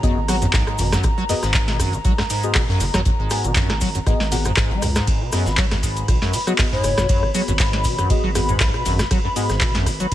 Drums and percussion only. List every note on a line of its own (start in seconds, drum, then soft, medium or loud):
0.03 kick loud
0.03 closed hi-hat medium
0.03 cabasa soft
0.28 cross-stick medium
0.28 closed hi-hat medium
0.28 open hi-hat loud
0.28 cabasa loud
0.42 closed hi-hat medium
0.42 mid tom medium
0.42 cabasa medium
0.53 kick loud
0.53 cross-stick medium
0.53 snare loud
0.53 clap loud
0.53 closed hi-hat medium
0.53 cabasa soft
0.67 cross-stick medium
0.67 closed hi-hat medium
0.78 closed hi-hat medium
0.78 mid tom loud
0.78 open hi-hat medium
0.78 cabasa medium
0.92 cross-stick medium
0.92 snare soft
0.92 snare medium
0.92 closed hi-hat medium
0.92 cabasa medium
1.03 kick loud
1.03 cross-stick medium
1.03 closed hi-hat medium
1.03 cabasa soft
1.29 closed hi-hat medium
1.29 open hi-hat loud
1.29 cabasa loud
1.43 cross-stick medium
1.43 snare soft
1.43 closed hi-hat medium
1.43 cabasa medium
1.54 kick loud
1.54 snare loud
1.54 clap loud
1.54 closed hi-hat medium
1.54 cabasa soft
1.68 snare soft
1.68 snare medium
1.68 closed hi-hat medium
1.80 kick medium
1.80 cross-stick medium
1.80 closed hi-hat medium
1.80 open hi-hat medium
1.80 cabasa loud
1.92 closed hi-hat soft
1.92 closed hi-hat medium
1.92 cabasa medium
2.04 kick loud
2.04 closed hi-hat medium
2.04 cabasa soft
2.18 cross-stick medium
2.18 snare medium
2.18 snare soft
2.30 closed hi-hat medium
2.30 open hi-hat loud
2.30 cabasa loud
2.43 closed hi-hat medium
2.43 cabasa medium
2.55 kick loud
2.55 cross-stick medium
2.55 snare loud
2.55 clap loud
2.55 closed hi-hat medium
2.55 open hi-hat medium
2.55 cabasa soft
2.69 snare soft
2.69 mid tom loud
2.80 closed hi-hat medium
2.80 open hi-hat loud
2.80 cabasa loud
2.94 cross-stick medium
2.94 snare medium
2.94 closed hi-hat medium
2.94 mid tom loud
2.94 cabasa medium
3.05 kick loud
3.05 closed hi-hat medium
3.05 cabasa soft
3.30 cross-stick medium
3.30 closed hi-hat medium
3.30 open hi-hat loud
3.30 cabasa medium
3.44 closed hi-hat medium
3.44 cabasa medium
3.55 kick loud
3.55 snare loud
3.55 clap loud
3.55 closed hi-hat loud
3.55 cabasa soft
3.70 cross-stick medium
3.70 snare medium
3.70 closed hi-hat medium
3.81 kick medium
3.81 closed hi-hat medium
3.81 open hi-hat medium
3.81 cabasa medium
3.95 closed hi-hat medium
3.95 closed hi-hat soft
3.95 cabasa medium
4.07 kick loud
4.07 cross-stick medium
4.07 closed hi-hat medium
4.07 cabasa soft
4.20 snare medium
4.32 closed hi-hat medium
4.32 open hi-hat loud
4.32 cabasa medium
4.45 cross-stick medium
4.45 closed hi-hat medium
4.45 mid tom medium
4.45 cabasa medium
4.57 kick loud
4.57 cross-stick medium
4.57 snare loud
4.57 clap loud
4.57 closed hi-hat medium
4.57 cabasa soft
4.71 closed hi-hat soft
4.82 cross-stick medium
4.82 closed hi-hat medium
4.82 mid tom medium
4.82 open hi-hat medium
4.82 cabasa medium
4.95 cross-stick medium
4.95 snare soft
4.95 snare medium
4.95 closed hi-hat medium
4.95 cabasa medium
5.07 kick loud
5.07 closed hi-hat medium
5.07 ride medium
5.07 cabasa soft
5.32 cross-stick medium
5.32 closed hi-hat medium
5.32 open hi-hat loud
5.32 cabasa medium
5.46 snare soft
5.46 closed hi-hat soft
5.46 cabasa medium
5.57 kick loud
5.57 snare loud
5.57 clap loud
5.57 closed hi-hat medium
5.57 ride medium
5.57 cabasa soft
5.71 cross-stick medium
5.71 snare medium
5.71 snare soft
5.71 closed hi-hat medium
5.83 kick medium
5.83 closed hi-hat medium
5.83 open hi-hat medium
5.83 cabasa medium
5.97 closed hi-hat medium
5.97 closed hi-hat soft
5.97 cabasa medium
6.08 kick loud
6.08 cross-stick medium
6.08 closed hi-hat loud
6.08 closed hi-hat medium
6.08 ride medium
6.08 cabasa soft
6.22 snare medium
6.22 snare soft
6.33 closed hi-hat medium
6.33 open hi-hat loud
6.33 cabasa medium
6.47 cross-stick medium
6.47 closed hi-hat medium
6.47 cabasa soft
6.58 kick loud
6.58 cross-stick medium
6.58 snare loud
6.58 clap loud
6.58 closed hi-hat medium
6.58 open hi-hat medium
6.58 ride medium
6.58 cabasa soft
6.72 snare soft
6.72 mid tom medium
6.83 cross-stick medium
6.83 closed hi-hat medium
6.83 open hi-hat medium
6.83 cabasa loud
6.98 cross-stick medium
6.98 snare medium
6.98 closed hi-hat medium
6.98 mid tom medium
6.98 cabasa medium
7.09 kick loud
7.09 closed hi-hat medium
7.09 ride medium
7.09 cabasa soft
7.23 cross-stick medium
7.34 closed hi-hat medium
7.34 open hi-hat loud
7.34 cabasa medium
7.48 closed hi-hat medium
7.48 cabasa medium
7.59 kick loud
7.59 cross-stick medium
7.59 snare loud
7.59 clap loud
7.59 closed hi-hat medium
7.59 ride medium
7.59 cabasa soft
7.73 snare medium
7.73 closed hi-hat medium
7.84 kick medium
7.84 closed hi-hat medium
7.84 open hi-hat medium
7.84 cabasa medium
7.98 cross-stick medium
7.98 closed hi-hat soft
7.98 closed hi-hat medium
7.98 cabasa medium
8.10 kick loud
8.10 closed hi-hat medium
8.10 ride medium
8.10 cabasa soft
8.35 cross-stick medium
8.35 closed hi-hat medium
8.35 open hi-hat loud
8.35 cabasa medium
8.49 closed hi-hat medium
8.49 mid tom medium
8.49 cabasa medium
8.60 kick loud
8.60 cross-stick medium
8.60 snare loud
8.60 clap loud
8.60 closed hi-hat medium
8.60 closed hi-hat loud
8.60 ride medium
8.60 cabasa soft
8.74 cross-stick medium
8.74 closed hi-hat soft
8.85 closed hi-hat medium
8.85 mid tom medium
8.85 open hi-hat medium
8.85 cabasa medium
8.99 cross-stick medium
8.99 snare medium
8.99 snare soft
8.99 closed hi-hat medium
8.99 cabasa medium
9.11 kick loud
9.11 cross-stick medium
9.11 closed hi-hat medium
9.11 ride medium
9.11 cabasa soft
9.36 closed hi-hat medium
9.36 open hi-hat loud
9.36 cabasa medium
9.49 cross-stick medium
9.49 snare soft
9.49 closed hi-hat medium
9.49 cabasa soft
9.61 kick loud
9.61 snare loud
9.61 clap loud
9.61 closed hi-hat medium
9.61 ride medium
9.61 cabasa soft
9.75 snare soft
9.75 snare medium
9.75 closed hi-hat medium
9.86 kick medium
9.86 cross-stick medium
9.86 closed hi-hat medium
9.86 open hi-hat medium
9.86 cabasa medium
10.00 closed hi-hat medium
10.00 closed hi-hat soft
10.00 cabasa medium